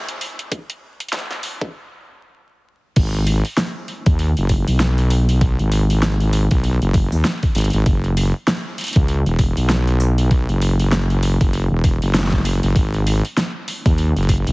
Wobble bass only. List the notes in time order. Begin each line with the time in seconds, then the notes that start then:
2.97 G#1
4.06 D#2
4.37 F#1
4.68 B1
5.59 G#1
6.51 B1
6.81 F#1
7.12 D#2
7.55 G#1
7.73 G#1
7.86 F#1
8.96 C#2
9.26 E1
9.57 B1
10.49 F#1
11.41 F#1
11.71 E1
12.02 F#1
12.63 F#1
12.76 G#1
13.86 D#2
14.16 F#1
14.47 B1